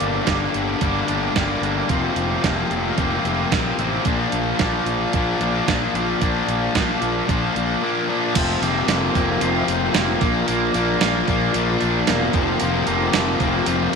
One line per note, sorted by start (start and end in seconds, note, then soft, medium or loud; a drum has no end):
0.00 0.20 G1 medium
0.00 0.54 G2 medium
0.00 0.26 D3 medium
0.00 0.27 G3 medium
0.00 0.29 A#3 medium
0.00 0.28 D4 medium
0.00 closed hi-hat medium
0.27 0.47 G1 medium
0.27 0.81 D3 medium
0.27 0.81 G3 medium
0.27 0.82 A#3 medium
0.27 0.81 D4 medium
0.27 kick loud
0.27 snare loud
0.27 closed hi-hat medium
0.54 0.74 G1 medium
0.54 closed hi-hat medium
0.81 1.00 G1 medium
0.81 1.35 G2 medium
0.81 1.34 D3 medium
0.81 1.09 G3 medium
0.81 1.09 A#3 medium
0.81 1.07 D4 loud
0.81 kick loud
0.81 closed hi-hat medium
1.08 1.28 G1 medium
1.08 1.36 G3 medium
1.08 1.37 A#3 medium
1.08 1.37 D4 medium
1.08 closed hi-hat medium
1.36 1.55 G1 medium
1.36 1.88 D3 medium
1.36 1.64 G3 medium
1.36 1.63 A#3 medium
1.36 1.62 D4 medium
1.36 kick medium
1.36 snare medium
1.36 closed hi-hat medium
1.61 1.81 G1 medium
1.61 1.89 G3 soft
1.61 1.91 A#3 medium
1.61 1.88 D4 medium
1.61 closed hi-hat medium
1.89 2.09 F1 medium
1.89 2.71 F2 medium
1.89 2.42 C3 medium
1.89 2.44 F3 medium
1.89 2.44 A#3 medium
1.89 2.44 C4 medium
1.89 kick loud
1.89 closed hi-hat medium
2.16 2.35 F1 medium
2.16 closed hi-hat medium
2.43 2.63 F1 medium
2.43 2.96 C3 medium
2.43 2.98 F3 medium
2.43 2.99 A#3 medium
2.43 2.98 C4 medium
2.43 kick loud
2.43 snare loud
2.43 closed hi-hat medium
2.70 2.90 F1 medium
2.70 closed hi-hat soft
2.97 3.17 F1 medium
2.97 3.51 F2 medium
2.97 3.50 C3 loud
2.97 3.27 F3 medium
2.97 3.26 A#3 loud
2.97 3.24 C4 medium
2.97 kick loud
2.97 closed hi-hat medium
3.25 3.44 F1 medium
3.25 3.52 F3 medium
3.25 3.52 A#3 medium
3.25 3.53 C4 medium
3.25 closed hi-hat medium
3.52 3.71 A#1 medium
3.52 4.04 C3 medium
3.52 3.80 F3 medium
3.52 3.79 A#3 medium
3.52 3.77 C4 medium
3.52 kick loud
3.52 snare medium
3.52 closed hi-hat medium
3.78 3.97 A1 medium
3.78 4.05 F3 soft
3.78 4.06 A#3 medium
3.78 4.04 C4 medium
3.78 closed hi-hat medium
4.05 4.25 A#1 medium
4.05 4.60 A#2 medium
4.05 4.61 F3 medium
4.05 4.61 A#3 medium
4.05 4.62 D4 medium
4.05 kick loud
4.05 closed hi-hat medium
4.32 4.52 A#1 medium
4.32 closed hi-hat medium
4.59 4.79 A#1 medium
4.59 5.13 A#2 medium
4.59 5.15 F3 medium
4.59 5.15 A#3 medium
4.59 5.15 D4 medium
4.59 kick medium
4.59 snare medium
4.59 closed hi-hat medium
4.86 5.05 A#1 medium
4.86 closed hi-hat medium
5.13 5.33 A#1 medium
5.13 5.66 A#2 medium
5.13 5.43 F3 medium
5.13 5.42 A#3 medium
5.13 5.40 D4 loud
5.13 kick loud
5.13 closed hi-hat medium
5.41 5.59 A#1 medium
5.41 5.68 F3 medium
5.41 5.69 A#3 medium
5.41 5.68 D4 medium
5.41 closed hi-hat medium
5.67 5.87 A#1 medium
5.67 6.20 A#2 medium
5.67 5.97 F3 medium
5.67 5.96 A#3 medium
5.67 5.94 D4 medium
5.67 kick medium
5.67 snare medium
5.67 closed hi-hat medium
5.94 6.13 A#1 medium
5.94 6.21 F3 medium
5.94 6.22 A#3 medium
5.94 6.22 D4 medium
5.94 snare soft
5.94 closed hi-hat medium
6.21 6.41 A#1 medium
6.21 6.74 A#2 medium
6.21 6.75 F3 medium
6.21 6.75 A#3 medium
6.21 6.76 D4 medium
6.21 kick medium
6.21 closed hi-hat medium
6.48 6.67 A#1 medium
6.48 closed hi-hat medium
6.75 6.94 A#1 medium
6.75 7.27 A#2 medium
6.75 7.28 F3 medium
6.75 7.28 A#3 medium
6.75 7.29 D4 medium
6.75 kick medium
6.75 snare medium
6.75 closed hi-hat medium
7.02 7.20 A#1 medium
7.02 closed hi-hat soft
7.28 7.48 A#1 medium
7.28 7.80 A#2 medium
7.28 7.55 F3 medium
7.28 7.55 A#3 medium
7.28 7.54 D4 medium
7.28 kick loud
7.28 closed hi-hat medium
7.55 7.74 A#1 medium
7.55 7.81 F3 medium
7.55 7.82 A#3 medium
7.55 7.82 D4 medium
7.55 closed hi-hat medium
7.82 8.34 A#2 medium
7.82 8.10 F3 medium
7.82 8.08 A#3 medium
7.82 8.08 D4 medium
8.09 8.34 F3 medium
8.09 8.34 A#3 medium
8.09 8.34 D4 medium
8.34 8.56 F1 medium
8.34 8.88 F2 medium
8.34 8.86 C3 medium
8.34 8.63 F3 medium
8.34 8.62 A#3 medium
8.34 8.60 C4 loud
8.34 13.95 F4 medium
8.34 10.20 A#4 medium
8.34 10.19 C5 medium
8.34 13.95 A#5 medium
8.34 kick loud
8.34 open hi-hat medium
8.34 crash loud
8.61 8.82 F1 medium
8.61 8.88 F3 medium
8.61 8.89 A#3 medium
8.61 8.88 C4 medium
8.61 open hi-hat medium
8.87 9.08 F1 medium
8.87 9.41 C3 medium
8.87 9.16 F3 medium
8.87 9.15 A#3 medium
8.87 9.13 C4 medium
8.87 snare loud
8.87 open hi-hat medium
9.14 9.36 F1 medium
9.14 9.42 F3 medium
9.14 9.42 A#3 medium
9.14 9.42 C4 medium
9.14 kick medium
9.14 open hi-hat medium
9.41 9.62 F1 loud
9.41 10.20 F2 medium
9.41 9.93 C3 loud
9.41 9.95 F3 loud
9.41 9.95 A#3 loud
9.41 9.95 C4 loud
9.41 11.54 F4 medium
9.41 open hi-hat medium
9.68 9.89 F1 medium
9.68 10.22 C4 medium
9.68 open hi-hat medium
9.94 10.15 F1 medium
9.94 10.20 C3 medium
9.94 10.22 F3 medium
9.94 10.21 A#3 medium
9.94 10.20 C4 medium
9.94 snare loud
9.94 open hi-hat medium
10.21 10.42 A#1 medium
10.21 10.46 A#2 medium
10.21 10.48 F3 medium
10.21 10.48 A#3 medium
10.21 10.48 D4 medium
10.21 13.95 A#4 medium
10.21 12.33 D5 medium
10.21 kick loud
10.21 snare soft
10.21 open hi-hat medium
10.47 10.69 A#1 medium
10.47 11.00 A#2 medium
10.47 10.76 F3 medium
10.47 10.75 A#3 medium
10.47 10.73 D4 loud
10.47 open hi-hat medium
10.74 10.95 A#1 medium
10.74 11.02 F3 medium
10.74 11.02 A#3 medium
10.74 11.02 D4 medium
10.74 open hi-hat medium
11.01 11.22 A#1 medium
11.01 11.52 A#2 medium
11.01 11.29 F3 medium
11.01 11.28 A#3 medium
11.01 11.26 D4 medium
11.01 snare loud
11.01 open hi-hat medium
11.27 11.48 A#1 loud
11.27 11.54 F3 medium
11.27 11.55 A#3 medium
11.27 11.55 D4 medium
11.27 kick medium
11.27 open hi-hat medium
11.54 11.75 A#1 medium
11.54 12.06 A#2 loud
11.54 12.07 F3 loud
11.54 12.09 A#3 loud
11.54 12.08 D4 loud
11.54 12.34 F4 medium
11.54 open hi-hat medium
11.80 12.02 A#1 medium
11.80 12.34 D4 medium
11.80 open hi-hat medium
12.07 12.29 E1 medium
12.07 12.33 A#2 medium
12.07 12.33 F3 medium
12.07 12.34 A#3 medium
12.07 12.33 D4 medium
12.07 snare loud
12.07 open hi-hat medium
12.32 12.54 F1 medium
12.32 12.59 F2 medium
12.32 12.59 C3 medium
12.32 12.60 F3 medium
12.32 12.61 A#3 medium
12.32 12.61 C4 medium
12.32 13.95 C5 medium
12.32 kick loud
12.32 open hi-hat medium
12.60 12.81 F1 medium
12.60 13.14 F2 medium
12.60 13.12 C3 medium
12.60 12.87 F3 medium
12.60 12.87 A#3 loud
12.60 12.85 C4 loud
12.60 open hi-hat medium
12.86 13.08 F1 medium
12.86 13.12 F3 medium
12.86 13.14 A#3 medium
12.86 13.14 C4 medium
12.86 open hi-hat medium
13.13 13.35 F1 medium
13.13 13.65 C3 medium
13.13 13.41 F3 medium
13.13 13.41 A#3 medium
13.13 13.39 C4 medium
13.13 snare loud
13.13 open hi-hat medium
13.40 13.61 F1 loud
13.40 13.66 F3 medium
13.40 13.67 A#3 medium
13.40 13.67 C4 medium
13.40 kick medium
13.40 open hi-hat medium
13.66 13.87 F1 medium
13.66 13.95 F2 loud
13.66 13.95 C3 medium
13.66 13.95 F3 loud
13.66 13.95 A#3 loud
13.66 13.95 C4 loud
13.66 13.95 F4 medium
13.66 open hi-hat medium